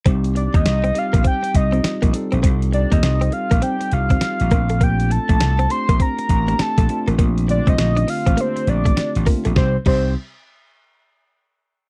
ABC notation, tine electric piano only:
X:1
M:4/4
L:1/16
Q:"Swing 16ths" 1/4=101
K:Cdor
V:1 name="Tine electric piano"
[G,CEG]6 [G,CEG]4- [G,CEG] [G,CEF]3 [G,CEA]2- | [G,CEA]2 [G,CEG]6 [G,CEG]6 [A,CDF]2- | [A,CDF]4- [A,CDF] z [A,CDG]4- [A,CDG] [A,CDG]3 [A,CDF]2- | [A,CDF]2 [D,A,CF]6 [A,CDG]6 [A,CDF]2 |
[G,CEG] z [G,CEG]2 z12 |]